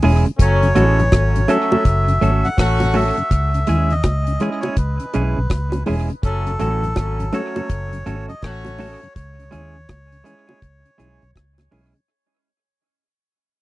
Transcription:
0.02 E1 E3 G#3 C#4 E4 G#4, open hi-hat, low bongo
0.26 C#3, muted clean electric guitar stroke, closed hi-hat
0.38 F#1 F#3 A3 C#4 C#5, kick, closed hi-hat
0.63 F#2 C#3, closed hi-hat
0.75 A1 E3 F#3 G#3 A3 B3 C#4 F#4 A4, closed hi-hat
0.99 F#2 C#3, closed hi-hat
1.12 G#1 F#3 A3 C#4, kick, cross-stick, closed hi-hat, high bongo
1.36 F#2 C#3, closed hi-hat
1.48 F#3 A3 C#4 F#4 A4 E5, closed hi-hat, low bongo
1.72 F#2 C#3 A3 C#4 F#4 A4, high bongo
1.85 F#1, kick, closed hi-hat
2.08 F#2 C#3, closed hi-hat
2.21 G#1 F#3 A3 C#4 F#4 A4, closed hi-hat
2.45 F#2 C#3 F#5, closed hi-hat
2.57 A1 A3 C#4 F#4, kick, cross-stick, closed hi-hat, high bongo
2.80 F#2 C#3, closed hi-hat, high bongo
2.94 F#3 A3 C#4 F#4 A4 E5, open hi-hat, low bongo
3.17 F#2 C#3, muted clean electric guitar stroke, closed hi-hat
3.31 C#2, kick, closed hi-hat
3.54 C#3, closed hi-hat
3.67 D#2 E3 G#3 C#4 E4 G#4, closed hi-hat
3.90 C#3 D#5, closed hi-hat
4.03 C#2, kick, cross-stick, closed hi-hat, high bongo
4.27 C#3, closed hi-hat
4.40 E3 G#3 C#4 E4 G#4 C#5, closed hi-hat, low bongo
4.51 D#5
4.60 C#5, closed hi-hat, high bongo
4.64 C#3 G#3 C#4 E4 G#4
4.77 C#2 B4, kick, closed hi-hat
5.00 C#3, closed hi-hat
5.13 B1 E3 G#3 C#4 E4 G#4, closed hi-hat
5.37 B1 C#3
5.50 C#2, kick, cross-stick, closed hi-hat, high bongo
5.72 C#3, closed hi-hat, high bongo
5.86 E1 E3 G#3 C#4 E4 G#4, open hi-hat, low bongo
6.10 C#3, muted clean electric guitar stroke, closed hi-hat
6.23 F#1 F#3 A3 C#4 A4, kick, closed hi-hat
6.47 F#2 C#3, closed hi-hat
6.59 A1 E3 F#3 A3 B3 C#4 F#4 A4, closed hi-hat
6.83 F#2 C#3, closed hi-hat
6.96 G#1 F#3 A3 C#4, kick, cross-stick, closed hi-hat, high bongo
7.20 F#2 C#3, closed hi-hat
7.33 F#3 A3 C#4 F#4 A4 C#5, closed hi-hat, low bongo
7.56 F#2 C#3 A3 C#4 F#4 A4, closed hi-hat, high bongo
7.69 F#1, kick, closed hi-hat
7.93 F#2 C#3, closed hi-hat
8.06 G#1 F#3 A3 C#4 F#4 A4, closed hi-hat
8.29 F#2 C#3 D#5, closed hi-hat
8.42 A1 A3 C#4 F#4 C#5, kick, cross-stick, closed hi-hat, high bongo
8.65 F#2 C#3, closed hi-hat, high bongo
8.78 F#3 A3 C#4 F#4 A4, open hi-hat, low bongo
9.01 F#2 C#3, muted clean electric guitar stroke, closed hi-hat
9.15 C#2 C#5, kick, closed hi-hat
9.39 C#3, closed hi-hat
9.51 D#2 E3 G#3 C#4 E4 G#4, closed hi-hat, high bongo
9.75 C#3
9.89 C#2, kick, cross-stick, closed hi-hat, high bongo
10.12 C#3, closed hi-hat
10.24 E3 G#3 C#4 E4 G#4, closed hi-hat, low bongo
10.47 C#3 G#3 C#4 E4 G#4, high bongo
10.62 C#2, kick, closed hi-hat
10.85 C#3, closed hi-hat
10.98 B1 E3 G#3 C#4 E4 G#4, closed hi-hat, high bongo
11.22 B1 C#3, closed hi-hat
11.35 C#2, kick, cross-stick, closed hi-hat, high bongo
11.58 C#3, cross-stick, closed hi-hat, high bongo
11.71 B1 E3 G#3 C#4 E4 G#4, open hi-hat, low bongo
11.94 C#3, muted clean electric guitar stroke, closed hi-hat

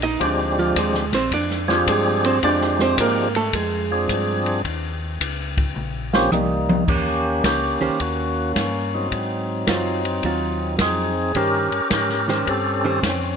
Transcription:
Already playing: A#1
0.02 D#4 D#5, ride
0.20 D2 F3 G#3 C4 D4 G4 D5, kick, ride
0.59 F3 F4
0.75 D#2 G#3 G#4, kick, hi-hat pedal, ride
0.94 D2, snare
1.12 A#1 C4 C5, snare, ride
1.31 F2 D4 D5, kick, ride
1.50 snare
1.68 F3 C4 D4 F4 G4 G#4, snare
1.86 G2 G#3 G#4, kick, hi-hat pedal, ride
2.25 C4 C5, ride
2.42 F2 F3 G#3 C4 D4 G4 D5, kick, ride
2.61 snare
2.79 C4 C5, snare
2.97 G#2 A#3 A#4, kick, hi-hat pedal, ride
3.35 A3 A4, ride
3.53 F2 G#3 G#4, kick, ride
3.91 F3 C4 D4 G#4
4.09 G2, kick, hi-hat pedal, ride
4.46 ride
4.65 D#2, kick, ride
5.20 C#2, kick, hi-hat pedal, ride
5.57 kick, ride
5.75 A#1, mid tom
6.13 F3 A#3 C4 C#4 G4, snare
6.31 C2 G3 A#3 D#4, hi-hat pedal, high tom
6.69 high tom
6.88 D#2 A#3 C#4 G4, kick, crash
7.44 C#2 A#3 C#4 G4, kick, snare, hi-hat pedal, ride
7.81 C#2 D#3 C#4 G4 C5
7.99 D#2 A#3 C#4 F#4, kick, ride
8.56 G2, kick, snare, hi-hat pedal, ride
8.94 F#3 C4 D#4
9.11 G#2, kick, ride
9.67 F#2 F#3 C4 F4, kick, snare, hi-hat pedal, ride
10.05 ride
10.23 D#2 F#3 C4 F4, kick, ride
10.79 F2 C4 D#4 G#4, kick, snare, hi-hat pedal, ride
11.34 G2 D#3 C#4 G4 A#4 C5, kick, ride
11.71 G2, ride
11.90 G#2 C#4 G4 A#4, kick, snare, hi-hat pedal, ride
12.10 snare
12.28 D#3 C#4 G4 C5, snare
12.46 G2 C4 C#4 A4, kick, ride
12.85 D#3 C#4 G4 C5
13.03 F2, kick, snare, hi-hat pedal, ride

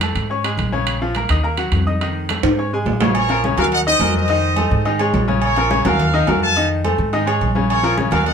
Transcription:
0.01 A3 A4 A5, high conga, high timbale
0.15 G#2, high conga, high timbale
0.30 C#4 C#5 C#6, high conga
0.44 G#3 G#4 G#5, high conga, high timbale
0.57 A#1, high conga, high timbale
0.72 C#3 C#4 C#5, high conga
0.87 high conga, high timbale
1.01 F3 F4 F5, high conga
1.15 A#3 A#4 A#5, high conga, high timbale
1.29 D#2 D#4 D#5 D#6, high conga, low conga, high timbale
1.43 A#3 A#4 A#5, high conga
1.58 F#3 F#4 F#5, high timbale
1.72 F2, high conga, high timbale
1.87 D#4 D#5 D#6, high conga
2.01 D#3 D#4 D#5, high conga, high timbale
2.16 high conga
2.29 A3 A4 A5, high conga, high timbale
2.43 G#2, high timbale
2.58 C#4 C#5 C#6, high conga
2.72 G#3 G#4 G#5, high conga
2.86 A#1, high conga, low timbale
3.01 C#3 C#4 C#5, high conga, low timbale
3.15 A#4 C#5, low agogo
3.29 F3 F4 A#4, low agogo
3.44 C#3 C#4 C#5, high conga
3.57 D#2 F#3 F#4 A#4 C#5 F5, high conga, low conga, low agogo
3.72 D#5 F#5, high conga, low agogo
3.86 D#3 D#4 C5 D#5, high conga
3.99 F2 F#3 F#4 A#4, high conga, low timbale, low agogo
4.14 C5 D#5, high conga
4.28 D#3 D#4 D#5, low agogo
4.43 high conga
4.56 A3 A4 C5, high conga, low agogo
4.71 G#2, high conga
4.85 D#3 D#4 D#5, high conga, low agogo
4.99 G#3 G#4 C#5, high conga, low agogo
5.14 A#1, high conga, low timbale, low agogo
5.28 C#3 C#4 C#5, high conga
5.42 A#4 C#5, high conga, low agogo
5.56 F3 F4 A#4, low agogo
5.71 C#3 C#4 C#5, high conga
5.85 D#2 F#3 F#4 A#4 F5, high conga, low conga, low agogo
6.00 high conga, low conga, low agogo
6.14 D#3 D#4 D#5, high conga
6.27 F2 F#3 F#4 A#4, high conga, low timbale, low agogo
6.42 F5 A5, high conga
6.56 D#3 D#4 D#5, high conga, low agogo
6.71 high conga
6.84 A3 A4 C5, high conga, low agogo
6.98 G#2, high conga
7.13 D#3 D#4 D#5, high conga, low agogo
7.26 G#3 G#4 C#5, high conga, low agogo
7.41 A#1, high conga, low agogo
7.55 C#3 C#4 C#5, high conga
7.70 A#4 C#5, high conga, low agogo
7.83 F3 F4 A#4, high conga, low agogo
7.97 C#3 C#4 C#5, high conga
8.11 D#2 F#3 F#4 A#4 C#5 F5, high conga, low conga, low agogo
8.24 D#5 F#5, high conga, low conga, low agogo

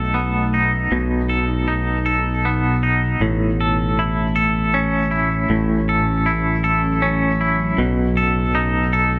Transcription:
Already playing: B1 B2 A3 D#4 A4
0.14 B3
0.54 D#4
0.92 B1 B2 B3
1.29 A4
1.68 D#4
2.06 A4
2.45 B3
2.83 D#4
3.20 A1 A2 A3 C#4
3.61 A4
3.99 E4
4.36 A4
4.74 C#4
5.11 E4
5.50 A1 A2 F#3
5.89 A4
6.26 E4
6.64 A4
7.02 C#4
7.41 E4
7.78 B1 B2 A3 D#4
8.17 A4
8.55 D#4
8.93 A4

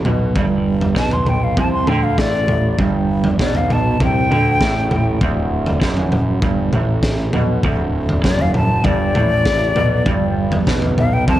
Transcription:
0.05 B1 B2, floor tom, mid tom
0.36 G1 G2, kick, floor tom
0.81 floor tom
0.96 B1 B2 A5, kick, snare
1.11 C6, floor tom
1.26 G5, floor tom, mid tom
1.44 F5
1.57 C2 C3 A5, kick, floor tom
1.73 C6
1.87 D2 D3 G5, floor tom, mid tom
2.03 F5
2.18 A1 A2 D5, kick, snare
2.48 floor tom, mid tom
2.79 G1 G2, kick, floor tom
3.24 floor tom
3.39 B1 B2 D5, kick, snare
3.55 F5, floor tom
3.70 A5, floor tom, mid tom
4.00 C2 C3 G5, kick, floor tom, mid tom
4.29 D2 D3, floor tom, mid tom
4.61 A1 A2, kick, snare
4.91 floor tom, mid tom
5.21 D1 D2, kick, floor tom
5.66 floor tom
5.81 F#1 F#2, kick, snare
5.97 floor tom
6.12 floor tom, mid tom
6.42 G1 G2, kick, floor tom
6.73 A1 A2, floor tom, mid tom
7.03 kick, snare
7.33 B1 B2, floor tom, mid tom
7.63 D1 D2, kick, floor tom
8.09 floor tom
8.24 F#1 F#2 D5, kick, snare
8.39 F5, floor tom
8.54 A5, floor tom, mid tom
8.84 G1 G2 D5, kick, floor tom
9.14 A1 A2, floor tom, mid tom
9.46 kick, snare
9.75 B1 B2, floor tom, mid tom
10.06 G1 G2, kick, floor tom
10.52 floor tom
10.67 B1 B2, kick, snare
10.82 floor tom
10.98 F5, floor tom, mid tom
11.13 G5
11.27 C2 C3 A5, kick, floor tom

